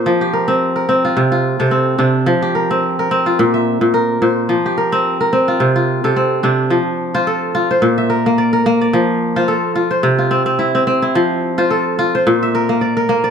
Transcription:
X:1
M:4/4
L:1/16
Q:"Swing 16ths" 1/4=108
K:F
V:1 name="Kora"
c G B3 B2 F2 F2 A C2 D2- | D G B3 B2 F2 e3 B2 c2- | c G B3 B2 F2 F2 A C2 D2- | D z2 c A3 c2 e B2 d B2 d- |
d z2 c A3 c2 F C2 E C2 E- | E z2 c A3 c2 e B2 d B2 d |]
V:2 name="Kora" clef=bass
F,2 z C2 z C2 C,2 z C,2 z C,2 | F,2 z C2 z C2 B,,2 z B,,2 z B,,2 | F,2 z C2 z C2 C,2 z C,2 z C,2 | F,2 z F2 z F2 B,,2 z B,2 z B,2 |
F,2 z F2 z F2 C,2 z C2 z C2 | F,2 z F2 z F2 B,,2 z B,2 z B,2 |]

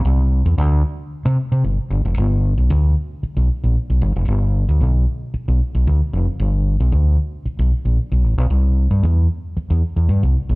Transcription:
X:1
M:4/4
L:1/16
Q:1/4=114
K:Gmix
V:1 name="Fingered electric bass" clef=bass
C,,3 E,, D,,2 z3 C, z C, G,,, z G,,, F,,, | G,,,3 B,,, D,,2 z3 B,,, z _B,,, z =B,,, G,,, F,,, | G,,,3 D,, B,,,2 z3 B,,, z B,,, D,, z F,,, z | G,,,3 B,,, D,,2 z3 B,,, z _B,,, z =B,,, A,,, B,,, |
C,,3 G,, E,,2 z3 E,, z E,, G,, C,, z _B,,, |]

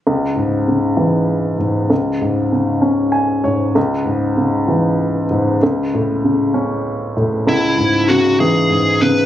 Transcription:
X:1
M:6/8
L:1/8
Q:3/8=65
K:C#m
V:1 name="Lead electric guitar"
z6 | z6 | z6 | z6 |
E2 F G2 B |]
V:2 name="Grand piano"
z6 | z4 g c | z6 | z6 |
z6 |]
V:3 name="Grand piano" clef=bass
C,, G,, C, E,2 G,, | C,, G,, C, C2 G,, | C,, G,, C, E,2 G,, | C,, A,, C, C2 A,, |
C,, G,, C, E, G,, C, |]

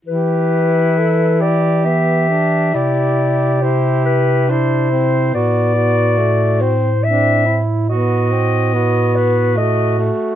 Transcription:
X:1
M:3/4
L:1/8
Q:1/4=70
K:Em
V:1 name="Clarinet"
B3 d e2 | d2 c B c2 | d3 c e z | ^d3 B d z |]
V:2 name="Alto saxophone"
G2 A G3 | G4 E2 | F F2 z D E | F2 F2 F2 |]
V:3 name="Tenor saxophone"
E4 B, D | E2 E2 D C | B,2 A, C C z | B, C B,2 A, A, |]
V:4 name="Bass clarinet" clef=bass
E,6 | C,6 | A,,6- | A,,4- A,, z |]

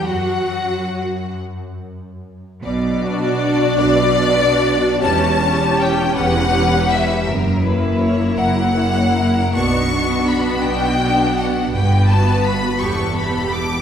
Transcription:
X:1
M:6/8
L:1/16
Q:3/8=54
K:Bm
V:1 name="Violin section"
F6 z6 | z6 d6 | a4 g2 f4 e2 | z6 f6 |
c'4 b2 g4 f2 | g2 a2 b2 c'2 b2 d'2 |]
V:2 name="Violin section"
f6 z6 | d12 | c6 B6 | ^A2 B2 c2 A2 c2 A2 |
F12 | B6 A6 |]
V:3 name="Viola section"
F6 z6 | z2 [DF]6 [DF]4 | [CG]2 [CG]6 [CG]4 | z2 [^A,E]6 [A,E]4 |
[B,D]2 [B,D]6 [B,D]4 | z2 [B,F]4 [B,G]2 [B,G]4 |]
V:4 name="Cello section" clef=bass
F,6 z6 | B,,6 B,,6 | E,,6 E,,6 | F,,6 F,,6 |
B,,6 B,,6 | G,,6 E,,6 |]
V:5 name="Double bass section" clef=bass
F,,8- F,,3 z | B,,,6 B,,,6 | E,,,6 E,,,6 | F,,,6 F,,,6 |
B,,,6 B,,,6 | G,,,6 E,,,6 |]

